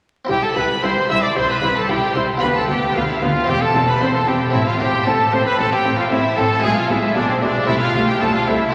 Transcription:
0.25 harpsichord C4 E4 G4
0.29 harpsichord C2, double bass section C2, cello section C2, viola section E4, trumpet G4, violin section G4 G5
0.43 trumpet A4, violin section A4 A5
0.56 harpsichord C2, double bass section C2, cello section C2, viola section E4, violin section B4 B5, trumpet B4
0.83 double bass section C2, cello section C2, harpsichord C2, viola section E4, violin section C5 C6, trumpet C5
1.10 harpsichord C2, cello section C2, double bass section C2, viola section E4, violin section E5 E6, trumpet E5
1.22 trumpet D5, violin section D5 D6
1.35 harpsichord C2, cello section C2, double bass section C2, viola section E4, violin section C5 C6, trumpet C5
1.49 violin section B4 B5, trumpet B4
1.62 harpsichord C2, double bass section C2, cello section C2, viola section E4
1.76 violin section A4 A5, trumpet A4
1.88 harpsichord C2, double bass section C2, cello section C2, viola section E4, violin section G4 G5, trumpet G4
2.14 harpsichord C2, double bass section C2, cello section C2, viola section E4, violin section C5 C6, trumpet C5
2.37 harpsichord B3 F4 G4, violin section B4 B5
2.42 cello section D2, harpsichord D2, double bass section D2, viola section B3, trumpet B4
2.55 violin section A4 A5, trumpet A4
2.68 harpsichord D2, cello section D2, double bass section D2, viola section B3, violin section G4 G5, trumpet G4
2.94 cello section D2, double bass section D2, harpsichord D2, viola section B3, violin section F4 F5, trumpet F4
3.08 violin section E4 E5, trumpet E4
3.21 cello section D2, double bass section D2, harpsichord D2, viola section B3, violin section F4 F5, trumpet F4
3.44 cello section E2, harpsichord C4 E4 G4, viola section C4, violin section G4 G5
3.48 double bass section E1, harpsichord E2, trumpet G4
3.60 violin section A4 A5, trumpet A4
3.74 double bass section E1, harpsichord E2, cello section E2, viola section C4
3.88 violin section B4 B5, trumpet B4
4.00 double bass section E1, cello section E2, harpsichord E2, viola section C4, violin section C5 C6, trumpet C5
4.13 violin section A4 A5, trumpet A4
4.26 double bass section E1, cello section E2, harpsichord E2, viola section C4, violin section G4 G5, trumpet G4
4.50 double bass section A1, cello section A2, harpsichord C4 E4, viola section C4, violin section E4 E5, trumpet E4
4.55 harpsichord A2
4.65 violin section F4 F5, trumpet F4
4.77 double bass section A1, cello section A2, harpsichord A2, viola section C4, violin section G4 G5
4.81 trumpet G4
5.05 double bass section A1, cello section A2, harpsichord A2, viola section C4, violin section A4 A5, trumpet A4
5.32 double bass section A1, cello section A2, harpsichord A2, viola section C4, violin section C5 C6, trumpet C5
5.44 violin section B4 B5, trumpet B4
5.56 double bass section A1, cello section A2, harpsichord A2, viola section C4, violin section A4 A5, trumpet A4
5.71 violin section G4 G5, trumpet G4
5.84 double bass section A1, cello section A2, harpsichord A2, viola section C4
5.98 violin section F4 F5, trumpet F4
6.09 double bass section A1, cello section A2, harpsichord A2, viola section C4, violin section E4 E5, trumpet E4
6.35 double bass section A1, cello section A2, harpsichord A2, viola section C4, violin section A4 A5, trumpet A4
6.60 double bass section B1, cello section B2, harpsichord G#3 D4 E4, violin section G#4 G#5, trumpet G#4
6.64 harpsichord B2, viola section G#3
6.76 trumpet F4, violin section F4 F5
6.88 double bass section B1, cello section B2, harpsichord B2, viola section G#3, trumpet E4, violin section E4 E5
7.13 double bass section B1, harpsichord B2, cello section B2, viola section G#3, violin section D4 D5, trumpet D4
7.28 trumpet C4, violin section C4 C5
7.40 double bass section B1, cello section B2, harpsichord B2, viola section G#3, violin section D4 D5, trumpet D4
7.64 cello section C3, harpsichord A3 C4 E4, violin section E4 E5
7.68 double bass section C2, harpsichord C3, viola section A3, trumpet E4
7.79 violin section F4 F5, trumpet F4
7.94 double bass section C2, cello section C3, harpsichord C3, viola section A3
8.07 violin section G4 G5, trumpet G4
8.20 double bass section C2, cello section C3, harpsichord C3, viola section A3, violin section A4 A5, trumpet A4
8.34 trumpet F4, violin section F4 F5
8.46 double bass section C2, cello section C3, harpsichord C3, viola section A3, trumpet E4, violin section E4 E5
8.69 harpsichord A3 E4

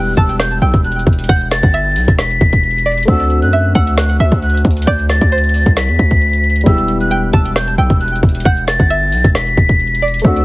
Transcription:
Already playing: 808-style bass E1, grand piano G3 B3 E4 G4, synth pluck G5, flute F#6
0.17 808-style bass E1, synth pluck A5, flute E6, kick, closed hi-hat
0.29 closed hi-hat
0.40 flute G6, snare, closed hi-hat
0.52 closed hi-hat
0.62 808-style bass B1, synth pluck G5, flute E6, closed hi-hat
0.74 808-style bass E1, kick, closed hi-hat
0.84 flute F#6, closed hi-hat
0.92 closed hi-hat
0.99 closed hi-hat
1.07 808-style bass E1, kick, closed hi-hat
1.13 closed hi-hat
1.19 closed hi-hat
1.24 closed hi-hat
1.29 808-style bass E1, synth pluck F#5, flute G6, kick, closed hi-hat
1.41 closed hi-hat
1.51 flute A6, snare, closed hi-hat
1.63 808-style bass G1, kick, closed hi-hat
1.74 synth pluck E5, closed hi-hat
1.96 808-style bass B1, open hi-hat
2.08 808-style bass E1, kick, closed hi-hat
2.19 flute B6, snare, closed hi-hat
2.31 closed hi-hat
2.41 808-style bass E1, kick, closed hi-hat
2.53 kick, closed hi-hat
2.63 closed hi-hat
2.71 closed hi-hat
2.78 closed hi-hat
2.86 synth pluck D5, closed hi-hat
2.92 closed hi-hat
2.97 closed hi-hat
3.03 grand piano A3, closed hi-hat
3.07 808-style bass D2, grand piano C4 D4 F#4, flute E6, kick, closed hi-hat
3.20 closed hi-hat
3.30 closed hi-hat
3.42 808-style bass F#2, flute F#6, closed hi-hat
3.53 synth pluck E5, closed hi-hat
3.75 808-style bass D2, synth pluck F#5, flute E6, kick, closed hi-hat
3.87 closed hi-hat
3.98 flute F#6, snare, closed hi-hat
4.10 closed hi-hat
4.20 808-style bass D2, synth pluck E5, flute E6, closed hi-hat
4.32 808-style bass D2, kick, closed hi-hat
4.42 flute F#6, closed hi-hat
4.50 closed hi-hat
4.57 closed hi-hat
4.65 808-style bass D2, kick, closed hi-hat
4.71 closed hi-hat
4.77 closed hi-hat
4.82 closed hi-hat
4.87 808-style bass D2, synth pluck D5, flute G6, kick, closed hi-hat
4.99 closed hi-hat
5.09 flute A6, snare, closed hi-hat
5.21 808-style bass D2, kick, closed hi-hat
5.32 synth pluck C5, closed hi-hat
5.38 closed hi-hat
5.44 closed hi-hat
5.49 closed hi-hat
5.54 open hi-hat
5.66 808-style bass C2, kick, closed hi-hat
5.77 flute B6, snare, closed hi-hat
5.89 808-style bass E2, closed hi-hat
5.99 808-style bass D2, kick, closed hi-hat
6.11 kick, closed hi-hat
6.21 closed hi-hat
6.33 closed hi-hat
6.44 closed hi-hat
6.50 closed hi-hat
6.56 closed hi-hat
6.61 grand piano G3, closed hi-hat
6.65 808-style bass E1, grand piano B3 E4 G4, flute E6, kick, closed hi-hat
6.78 closed hi-hat
6.88 closed hi-hat
7.00 flute F#6, closed hi-hat
7.11 synth pluck G5, closed hi-hat
7.33 808-style bass E1, synth pluck A5, flute E6, kick, closed hi-hat
7.46 closed hi-hat
7.56 flute G6, snare, closed hi-hat
7.68 closed hi-hat
7.78 808-style bass B1, synth pluck G5, flute E6, closed hi-hat
7.90 808-style bass E1, kick, closed hi-hat
8.01 flute F#6, closed hi-hat
8.08 closed hi-hat
8.16 closed hi-hat
8.23 808-style bass E1, kick, closed hi-hat
8.29 closed hi-hat
8.35 closed hi-hat
8.40 closed hi-hat
8.45 808-style bass E1, synth pluck F#5, flute G6, kick, closed hi-hat
8.57 closed hi-hat
8.67 flute A6, snare, closed hi-hat
8.80 808-style bass G1, kick, closed hi-hat
8.90 synth pluck E5, closed hi-hat
9.12 808-style bass B1, open hi-hat
9.24 808-style bass E1, kick, closed hi-hat
9.35 flute B6, snare, closed hi-hat
9.47 closed hi-hat
9.57 808-style bass E1, kick, closed hi-hat
9.69 kick, closed hi-hat
9.80 closed hi-hat
9.87 closed hi-hat
9.95 closed hi-hat
10.02 synth pluck D5, closed hi-hat
10.08 closed hi-hat
10.14 closed hi-hat
10.19 grand piano A3, closed hi-hat
10.24 808-style bass D2, grand piano C4 D4 F#4, flute E6, kick, closed hi-hat
10.36 closed hi-hat

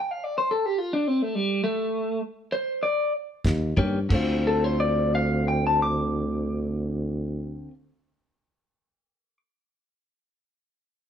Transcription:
Already playing: clean electric guitar E5 G5
0.11 clean electric guitar F5
0.24 clean electric guitar D5
0.38 clean electric guitar C5
0.51 clean electric guitar A4
0.66 clean electric guitar G4
0.78 clean electric guitar F4
0.93 clean electric guitar D4
1.08 clean electric guitar C4
1.22 clean electric guitar A3
1.35 clean electric guitar G3
1.64 clean electric guitar A3
2.52 clean electric guitar C5
2.83 clean electric guitar D5
3.44 tuba D#2, kick, snare, closed hi-hat
3.77 tuba G2, clean electric guitar D#3 A#3 C#4 G4, kick
4.09 tuba D2, clean electric guitar D3 A3, kick, crash
4.14 clean electric guitar C4 F4
4.47 clean electric guitar A4
4.64 clean electric guitar C5
4.80 clean electric guitar D5
5.15 clean electric guitar F5
5.48 clean electric guitar G5
5.67 clean electric guitar A5
5.82 clean electric guitar D6

